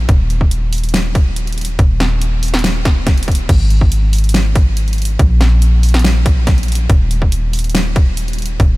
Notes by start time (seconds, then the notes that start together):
0.09 D#1, kick, closed hi-hat
0.30 closed hi-hat
0.41 kick
0.51 closed hi-hat
0.73 open hi-hat
0.78 closed hi-hat
0.84 closed hi-hat
0.89 closed hi-hat
0.94 snare, closed hi-hat
1.15 kick, closed hi-hat
1.36 closed hi-hat
1.47 closed hi-hat
1.53 closed hi-hat
1.58 closed hi-hat
1.61 closed hi-hat
1.65 closed hi-hat
1.79 D#1, kick, closed hi-hat
2.00 snare, closed hi-hat
2.22 closed hi-hat
2.43 open hi-hat
2.48 closed hi-hat
2.54 snare, closed hi-hat
2.59 closed hi-hat
2.64 snare, closed hi-hat
2.85 kick, snare, closed hi-hat
3.07 kick, snare, closed hi-hat
3.18 closed hi-hat
3.23 closed hi-hat
3.28 kick, closed hi-hat
3.32 closed hi-hat
3.35 closed hi-hat
3.49 G#1, kick, closed hi-hat, crash
3.70 closed hi-hat
3.81 kick
3.92 closed hi-hat
4.13 open hi-hat
4.18 closed hi-hat
4.24 closed hi-hat
4.29 closed hi-hat
4.34 snare, closed hi-hat
4.56 kick, closed hi-hat
4.77 closed hi-hat
4.88 closed hi-hat
4.93 closed hi-hat
4.98 closed hi-hat
5.02 closed hi-hat
5.05 closed hi-hat
5.19 A#1, kick, closed hi-hat
5.41 snare, closed hi-hat
5.62 closed hi-hat
5.83 open hi-hat
5.89 closed hi-hat
5.94 snare, closed hi-hat
5.99 closed hi-hat
6.04 snare, closed hi-hat
6.26 kick, closed hi-hat
6.47 kick, snare, closed hi-hat
6.58 closed hi-hat
6.63 closed hi-hat
6.68 closed hi-hat
6.72 closed hi-hat
6.75 closed hi-hat
6.90 D#1, kick, closed hi-hat
7.11 closed hi-hat
7.22 kick
7.32 closed hi-hat
7.53 open hi-hat
7.59 closed hi-hat
7.64 closed hi-hat
7.70 closed hi-hat
7.75 snare, closed hi-hat
7.96 kick, closed hi-hat
8.17 closed hi-hat
8.28 closed hi-hat
8.33 closed hi-hat
8.38 closed hi-hat
8.42 closed hi-hat
8.46 closed hi-hat
8.60 D#1, kick, closed hi-hat